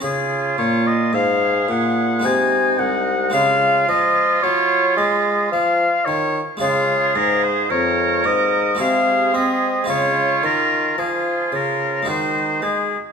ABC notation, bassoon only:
X:1
M:3/4
L:1/8
Q:1/4=55
K:Db
V:1 name="Bassoon" clef=bass
D, B,, A,, B,, C, C,, | D, F, G, A, F, E, | D, A,, F,, A,, C, C | D, E, F, D, E, A, |]